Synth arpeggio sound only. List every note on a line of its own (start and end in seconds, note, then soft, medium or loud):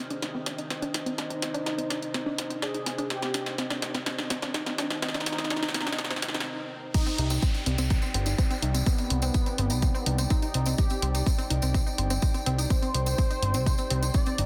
0.11 0.16 D4 loud
0.22 0.28 D#4 medium
0.34 0.40 C4 medium
0.46 0.52 D4 loud
0.58 0.64 D#4 medium
0.70 0.76 C4 medium
0.82 0.88 D4 loud
0.94 1.00 D#4 medium
1.06 1.12 C4 medium
1.18 1.24 D4 loud
1.30 1.36 D#4 medium
1.42 1.48 C4 medium
1.54 1.60 D4 loud
1.66 1.72 D#4 medium
1.78 1.84 C4 medium
1.90 1.96 D4 loud
2.02 2.08 D#4 medium
2.14 2.20 C4 medium
2.26 2.32 D4 loud
2.38 2.44 D#4 medium
2.50 2.56 C4 medium
2.62 2.68 D4 loud
2.74 2.80 D#4 medium
2.86 2.92 C4 medium
2.98 3.04 D4 loud
3.10 3.16 D#4 medium
3.22 3.28 C4 medium
3.34 3.40 D4 loud
3.46 3.52 D#4 medium
3.58 3.64 C4 medium
3.70 3.76 D4 loud
3.82 3.88 D#4 medium
3.94 4.00 C4 medium
4.06 4.12 D4 loud
4.19 4.24 D#4 medium
4.30 4.36 C4 medium
4.42 4.48 D4 loud
4.54 4.60 D#4 medium
4.66 4.72 C4 medium
4.78 4.84 D4 loud
4.90 4.96 D#4 medium
5.02 5.08 C4 medium
5.14 5.20 D4 loud
5.26 5.32 D#4 medium
5.38 5.44 C4 medium
5.50 5.56 D4 loud
5.62 5.68 D#4 medium
5.74 5.80 C4 medium
5.86 5.92 D4 loud
5.98 6.04 D#4 medium
6.10 6.16 C4 medium
6.22 6.28 C4 medium
6.35 6.40 D#4 medium
6.95 7.03 C4 medium
7.06 7.10 C4 loud
7.18 7.22 D#4 medium
7.31 7.39 C4 medium
7.42 7.46 C4 loud
7.54 7.58 D#4 medium
7.66 7.75 C4 medium
7.78 7.82 C4 loud
7.90 7.94 D#4 medium
8.02 8.11 C4 medium
8.14 8.18 C4 loud
8.26 8.30 D#4 medium
8.38 8.47 C4 medium
8.50 8.54 C4 loud
8.62 8.66 D#4 medium
8.74 8.83 C4 medium
8.86 8.90 C4 loud
8.98 9.02 D#4 medium
9.10 9.19 C4 medium
9.22 9.26 C4 loud
9.34 9.38 D#4 medium
9.46 9.55 C4 medium
9.58 9.62 C4 loud
9.71 9.74 D#4 medium
9.82 9.91 C4 medium
9.95 9.98 C4 loud
10.06 10.10 D#4 medium
10.19 10.27 C4 medium
10.31 10.34 C4 loud
10.43 10.46 D#4 medium
10.55 10.63 C4 medium
10.67 10.70 C4 loud
10.78 10.82 D#4 medium
10.91 10.99 C4 medium
11.02 11.06 C4 loud
11.14 11.18 D#4 medium
11.26 11.35 C4 medium
11.38 11.42 C4 loud
11.50 11.54 D#4 medium
11.62 11.71 C4 medium
11.74 11.78 C4 loud
11.87 11.90 D#4 medium
11.98 12.07 C4 medium
12.10 12.14 C4 loud
12.22 12.26 D#4 medium
12.34 12.43 C4 medium
12.46 12.50 C4 loud
12.58 12.62 D#4 medium
12.70 12.79 C4 medium
12.82 12.86 C4 loud
12.94 12.98 D#4 medium
13.06 13.15 C4 medium
13.18 13.22 C4 loud
13.30 13.34 D#4 medium
13.42 13.51 C4 medium
13.55 13.58 C4 loud
13.66 13.70 D#4 medium
13.79 13.87 C4 medium
13.90 13.94 C4 loud
14.02 14.06 D#4 medium
14.14 14.23 C4 medium
14.26 14.30 C4 loud
14.38 14.42 D#4 medium